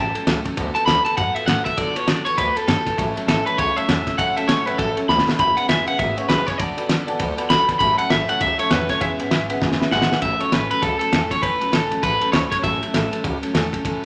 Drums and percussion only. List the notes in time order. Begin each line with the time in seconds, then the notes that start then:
0.15 ride
0.27 snare, ride
0.45 kick, ride
0.57 kick, ride
0.76 ride
0.88 snare, ride
1.06 ride
1.17 kick, ride
1.36 ride
1.48 snare, ride
1.66 kick, ride
1.78 kick, ride
1.96 ride
2.08 snare, ride
2.26 ride
2.38 kick, ride
2.57 ride
2.68 snare, ride
2.87 kick, snare, ride
2.98 kick, ride
3.17 ride
3.28 snare, ride
3.47 ride
3.58 kick, ride
3.77 ride
3.89 snare, ride
4.07 kick, snare, ride
4.19 kick, ride
4.37 ride
4.49 snare, ride
4.67 ride
4.79 kick, ride
4.97 ride
5.09 snare
5.19 snare
5.29 snare
5.39 kick, ride
5.57 ride
5.69 snare, ride
5.87 ride
5.99 kick, ride
6.18 ride
6.29 snare, ride
6.48 kick, snare, ride
6.59 kick, ride
6.78 ride
6.89 snare, ride
7.08 ride
7.20 kick, ride
7.38 ride
7.50 snare, ride
7.69 kick, snare, ride
7.80 kick, ride
7.99 ride
8.10 snare, ride
8.29 ride
8.41 kick, ride
8.59 ride
8.71 snare, ride
8.89 kick, snare, ride
9.01 kick, ride
9.20 ride
9.31 snare, ride
9.50 ride
9.62 kick, snare
9.72 snare
9.82 snare
9.91 snare
10.02 snare
10.12 snare
10.22 kick, ride
10.40 ride
10.52 snare, ride
10.71 ride
10.82 kick, ride
11.01 ride
11.13 snare, ride
11.31 kick, snare, ride
11.43 kick, ride
11.61 ride
11.73 snare, ride
11.91 ride
12.03 kick, ride
12.21 ride
12.33 snare, ride
12.52 kick, snare, ride
12.64 kick, ride
12.83 ride
12.94 snare, ride
13.13 ride
13.24 kick, ride
13.43 ride
13.55 snare, ride
13.73 kick, ride
13.85 kick, ride